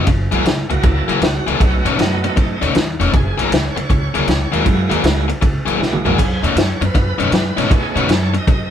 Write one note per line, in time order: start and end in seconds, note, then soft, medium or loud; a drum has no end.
0.07 0.25 F#1 medium
0.07 muted overdriven electric guitar stroke soft
0.07 kick loud
0.07 ride medium
0.31 0.41 A#1 medium
0.31 0.44 F#3 medium
0.31 0.44 G#3 medium
0.31 0.45 A#3 medium
0.31 0.45 E4 medium
0.31 0.45 F#4 medium
0.31 0.45 G#4 medium
0.31 ride medium
0.45 0.63 C#2 medium
0.45 muted overdriven electric guitar stroke soft
0.45 snare loud
0.45 ride medium
0.70 0.79 C#2 medium
0.70 1.19 F#3 medium
0.70 1.20 A#3 medium
0.70 1.20 E4 medium
0.70 0.84 F#4 medium
0.70 muted overdriven electric guitar stroke soft
0.70 ride medium
0.82 1.01 C#2 medium
0.82 0.85 G#4 medium
0.82 muted overdriven electric guitar stroke soft
0.82 kick loud
0.82 ride medium
0.86 1.22 A4 medium
1.08 1.18 C#2 medium
1.08 1.21 F#3 medium
1.08 1.21 A#3 medium
1.08 1.22 E4 medium
1.08 1.22 G#4 medium
1.08 ride medium
1.21 1.39 C#2 medium
1.21 muted overdriven electric guitar stroke soft
1.21 snare loud
1.21 ride medium
1.25 1.48 F#4 medium
1.46 1.56 C#2 medium
1.46 1.60 F#3 medium
1.46 1.60 A#3 medium
1.46 1.60 E4 medium
1.46 1.60 G#4 loud
1.46 ride medium
1.51 1.62 A4 medium
1.60 1.78 B1 medium
1.60 2.67 A3 medium
1.60 2.00 B3 medium
1.60 1.86 C#4 medium
1.60 2.68 D#4 medium
1.60 1.87 F#4 medium
1.60 muted overdriven electric guitar stroke medium
1.60 kick loud
1.60 ride medium
1.85 1.94 G#2 medium
1.85 1.98 B2 medium
1.85 1.98 A3 medium
1.85 1.99 C#4 medium
1.85 1.98 D#4 medium
1.85 ride medium
1.98 2.25 F#2 medium
1.98 2.36 F#3 medium
1.98 2.37 B3 medium
1.98 muted overdriven electric guitar stroke soft
1.98 snare loud
1.98 ride medium
2.24 muted overdriven electric guitar stroke medium
2.24 ride medium
2.36 2.55 F#2 medium
2.36 muted overdriven electric guitar stroke soft
2.36 kick loud
2.36 ride medium
2.61 2.71 D#2 medium
2.61 2.74 B2 medium
2.61 2.74 A3 medium
2.61 2.74 C#4 medium
2.61 2.75 D#4 loud
2.61 ride medium
2.75 2.93 D#2 medium
2.75 muted overdriven electric guitar stroke soft
2.75 snare loud
2.75 ride medium
3.00 3.09 E1 medium
3.00 3.14 B2 medium
3.00 3.13 A3 medium
3.00 3.13 C#4 loud
3.00 3.13 D#4 loud
3.00 ride medium
3.13 3.31 F#1 medium
3.13 3.39 G#4 loud
3.13 muted overdriven electric guitar stroke soft
3.13 kick loud
3.13 ride medium
3.38 3.47 A#1 medium
3.38 3.50 F#3 medium
3.38 3.50 A#3 medium
3.38 3.51 E4 medium
3.38 3.51 G#4 medium
3.38 3.52 A#4 medium
3.38 ride medium
3.51 3.69 C#2 medium
3.51 muted overdriven electric guitar stroke soft
3.51 snare loud
3.51 ride medium
3.55 3.78 C#5 medium
3.75 3.86 C#2 medium
3.75 3.77 C5 medium
3.75 muted overdriven electric guitar stroke medium
3.75 ride medium
3.79 4.52 C#5 loud
3.90 4.07 C#2 medium
3.90 muted overdriven electric guitar stroke soft
3.90 kick loud
3.90 ride medium
4.14 4.24 C#2 medium
4.14 4.26 F#3 medium
4.14 4.26 A#3 medium
4.14 4.27 E4 medium
4.14 4.27 G#4 medium
4.14 ride medium
4.27 4.45 C#2 medium
4.27 muted overdriven electric guitar stroke soft
4.27 snare medium
4.27 ride medium
4.52 4.62 D#2 medium
4.52 4.64 F#3 medium
4.52 5.01 G#3 medium
4.52 4.64 A#3 medium
4.52 5.01 A#3 medium
4.52 4.65 E4 medium
4.52 5.02 E4 medium
4.52 5.02 F#4 medium
4.52 4.65 G#4 medium
4.52 ride medium
4.65 4.84 F#2 loud
4.65 muted overdriven electric guitar stroke soft
4.65 kick loud
4.65 ride medium
4.90 5.00 D#2 medium
4.90 5.02 F#3 medium
4.90 5.02 A#3 medium
4.90 5.02 E4 medium
4.90 5.02 G#4 medium
4.90 ride medium
5.03 5.31 C#2 medium
5.03 5.27 G#3 medium
5.03 5.27 A#3 medium
5.03 5.27 E4 medium
5.03 5.27 F#4 medium
5.03 muted overdriven electric guitar stroke soft
5.03 snare loud
5.03 ride medium
5.28 muted overdriven electric guitar stroke soft
5.28 ride medium
5.41 5.60 C#2 medium
5.41 muted overdriven electric guitar stroke soft
5.41 kick loud
5.41 ride medium
5.66 5.76 A#1 medium
5.66 5.79 F#3 medium
5.66 5.79 A#3 medium
5.66 5.79 E4 medium
5.66 5.79 G#4 medium
5.66 ride medium
5.79 5.98 A#1 medium
5.79 6.18 G#3 medium
5.79 6.18 A#3 medium
5.79 6.19 E4 medium
5.79 6.19 F#4 medium
5.79 muted overdriven electric guitar stroke soft
5.79 snare medium
5.93 mid tom medium
6.05 6.14 A#1 medium
6.05 6.18 F#3 medium
6.05 6.18 A#3 medium
6.05 6.19 E4 medium
6.05 6.19 G#4 loud
6.05 floor tom loud
6.18 6.36 B1 medium
6.18 6.43 G#4 loud
6.18 muted overdriven electric guitar stroke medium
6.18 kick loud
6.18 crash medium
6.18 ride medium
6.43 6.52 D#2 medium
6.43 6.55 B2 medium
6.43 6.55 A3 medium
6.43 6.56 C#4 medium
6.43 6.56 D#4 loud
6.43 ride medium
6.48 6.58 A4 medium
6.55 6.74 F#2 medium
6.55 muted overdriven electric guitar stroke soft
6.55 snare loud
6.55 ride medium
6.60 6.83 C#5 medium
6.81 6.90 F#2 medium
6.81 muted overdriven electric guitar stroke soft
6.81 ride medium
6.85 7.58 B4 loud
6.94 7.13 F#2 medium
6.94 muted overdriven electric guitar stroke soft
6.94 kick loud
6.94 ride medium
7.18 7.28 F#2 loud
7.18 7.31 B2 medium
7.18 7.31 A3 medium
7.18 7.31 C#4 loud
7.18 7.32 D#4 loud
7.18 ride medium
7.31 7.50 F#2 medium
7.31 muted overdriven electric guitar stroke soft
7.31 snare loud
7.31 ride medium
7.57 7.67 G#2 medium
7.57 7.69 B2 medium
7.57 8.06 A3 medium
7.57 7.70 A3 medium
7.57 8.06 B3 medium
7.57 8.07 C#4 medium
7.57 7.70 C#4 loud
7.57 7.70 D#4 loud
7.57 7.72 D#4 medium
7.57 snare soft
7.57 ride medium
7.69 7.89 B2 medium
7.69 7.72 G4 medium
7.69 muted overdriven electric guitar stroke soft
7.69 kick loud
7.69 ride medium
7.74 7.96 D#4 medium
7.74 7.97 G#4 medium
7.95 8.05 G#2 medium
7.95 8.08 B2 medium
7.95 8.08 A3 medium
7.95 8.08 C#4 medium
7.95 8.09 D#4 medium
7.95 8.09 F#4 medium
7.95 8.10 B4 medium
7.95 ride medium
8.08 8.35 F#2 medium
8.08 8.34 A4 medium
8.08 muted overdriven electric guitar stroke soft
8.08 snare loud
8.08 ride medium
8.12 8.35 C#5 medium
8.33 muted overdriven electric guitar stroke soft
8.33 ride medium
8.38 8.70 D#5 loud
8.47 8.65 F#2 medium
8.47 muted overdriven electric guitar stroke soft
8.47 kick loud
8.47 ride medium